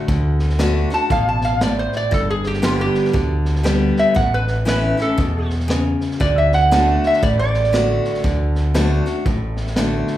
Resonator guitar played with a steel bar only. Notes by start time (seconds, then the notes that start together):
Already playing: F#4
0.94 A5
1.12 F5
1.28 A5
1.45 F5
1.63 D5
1.79 C5
1.97 D5
2.14 A4
2.30 G#4
2.47 G4
2.64 F4
2.81 G4
3.99 E5
4.16 F#5
4.34 B4
4.68 B4
5.02 A4
6.21 D5
6.38 E5
6.54 F#5
7.07 E5
7.23 D5
7.39 D5